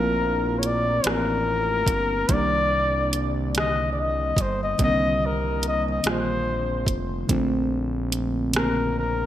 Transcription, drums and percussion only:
0.63 closed hi-hat medium
1.04 cross-stick loud
1.04 closed hi-hat medium
1.86 kick loud
1.86 closed hi-hat medium
2.29 kick loud
2.29 closed hi-hat medium
3.13 closed hi-hat medium
3.55 cross-stick loud
3.55 closed hi-hat medium
4.37 kick medium
4.37 closed hi-hat medium
4.79 kick medium
4.79 closed hi-hat medium
5.63 closed hi-hat medium
6.04 cross-stick loud
6.04 closed hi-hat medium
6.86 kick medium
6.86 closed hi-hat medium
7.29 kick loud
7.29 closed hi-hat medium
8.12 closed hi-hat medium
8.53 cross-stick loud
8.53 closed hi-hat medium

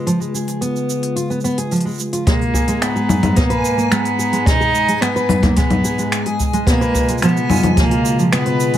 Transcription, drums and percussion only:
0.07 open hi-hat soft
0.07 shaker soft
0.22 shaker soft
0.35 shaker medium
0.48 open hi-hat soft
0.48 shaker soft
0.62 open hi-hat soft
0.62 shaker soft
0.76 shaker soft
0.90 shaker medium
1.03 open hi-hat soft
1.17 open hi-hat soft
1.17 shaker soft
1.31 shaker soft
1.41 shaker soft
1.45 shaker medium
1.58 open hi-hat soft
1.58 shaker soft
1.71 open hi-hat soft
1.71 shaker soft
1.76 open hi-hat soft
1.81 open hi-hat soft
1.86 shaker soft
1.88 shaker soft
1.91 shaker soft
1.93 shaker soft
1.95 shaker soft
1.98 shaker soft
2.00 shaker medium
2.13 open hi-hat soft
2.13 shaker soft
2.27 kick loud
2.27 open hi-hat medium
2.27 shaker soft
2.42 shaker soft
2.54 kick medium
2.54 shaker medium
2.68 open hi-hat soft
2.68 shaker soft
2.82 finger snap loud
2.82 open hi-hat medium
2.82 shaker soft
2.96 shaker soft
3.09 low conga medium
3.09 shaker medium
3.23 open hi-hat soft
3.23 low conga medium
3.23 shaker soft
3.37 kick loud
3.37 open hi-hat medium
3.37 shaker soft
3.50 open hi-hat soft
3.50 shaker soft
3.65 shaker medium
3.79 shaker soft
3.92 finger snap loud
3.92 open hi-hat medium
3.92 shaker soft
4.05 open hi-hat soft
4.05 shaker soft
4.20 shaker medium
4.33 open hi-hat soft
4.33 shaker soft
4.46 kick loud
4.46 open hi-hat medium
4.46 shaker soft
4.61 shaker soft
4.75 shaker medium
4.89 open hi-hat soft
4.89 shaker soft
5.02 finger snap loud
5.02 open hi-hat medium
5.02 shaker soft
5.17 shaker soft
5.29 low conga medium
5.29 shaker medium
5.43 kick loud
5.43 open hi-hat soft
5.43 low conga medium
5.43 shaker soft
5.57 kick loud
5.57 open hi-hat medium
5.57 shaker soft
5.71 open hi-hat soft
5.71 low conga medium
5.71 shaker soft
5.85 shaker medium
5.99 shaker soft
6.12 finger snap loud
6.12 open hi-hat medium
6.12 shaker soft
6.26 open hi-hat soft
6.26 shaker soft
6.40 kick medium
6.40 shaker medium
6.53 open hi-hat soft
6.53 shaker soft
6.67 kick loud
6.67 open hi-hat medium
6.67 shaker soft
6.82 shaker soft
6.95 kick medium
6.95 shaker medium
7.09 open hi-hat soft
7.09 shaker soft
7.18 shaker soft
7.22 finger snap loud
7.22 open hi-hat medium
7.22 shaker soft
7.28 shaker soft
7.37 shaker soft
7.50 low conga medium
7.50 shaker medium
7.53 shaker medium
7.55 shaker medium
7.57 shaker soft
7.60 shaker soft
7.62 open hi-hat soft
7.62 low conga medium
7.62 shaker soft
7.64 shaker soft
7.77 kick loud
7.77 open hi-hat medium
7.77 shaker soft
7.91 open hi-hat soft
7.91 shaker soft
8.06 shaker medium
8.19 shaker soft
8.32 finger snap loud
8.32 open hi-hat medium
8.32 shaker soft
8.46 open hi-hat soft
8.46 shaker soft
8.60 shaker medium
8.74 open hi-hat soft
8.74 shaker soft

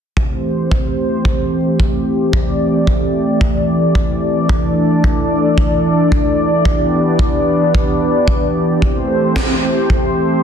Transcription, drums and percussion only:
0.17 kick loud
0.71 kick loud
1.25 kick loud
1.80 kick loud
2.33 kick loud
2.87 kick loud
3.41 kick loud
3.95 kick loud
4.49 kick loud
5.04 kick loud
5.58 kick loud
6.12 kick loud
6.65 kick loud
7.19 kick loud
7.75 kick loud
8.28 kick loud
8.82 kick loud
9.36 kick loud
9.36 snare loud
9.90 kick loud

